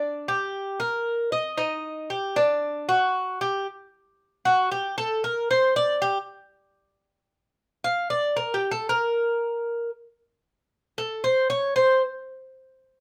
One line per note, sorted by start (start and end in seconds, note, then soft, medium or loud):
0.00 0.27 D4 medium
0.28 0.79 G4 medium
0.80 1.30 A#4 medium
1.32 1.57 D#5 medium
1.58 2.08 D#4 medium
2.10 2.36 G4 medium
2.36 2.87 D4 medium
2.89 3.39 F#4 medium
3.41 3.66 G4 medium
4.45 4.71 F#4 medium
4.71 4.97 G4 medium
4.98 5.23 A4 medium
5.24 5.49 A#4 medium
5.51 5.75 C5 medium
5.76 6.01 D5 loud
6.02 6.17 G4 medium
7.84 8.10 F5 medium
8.10 8.36 D5 medium
8.36 8.54 A#4 medium
8.54 8.71 G4 medium
8.71 8.88 A4 medium
8.89 9.90 A#4 medium
10.98 11.23 A4 medium
11.24 11.49 C5 medium
11.50 11.75 C#5 medium
11.76 12.01 C5 medium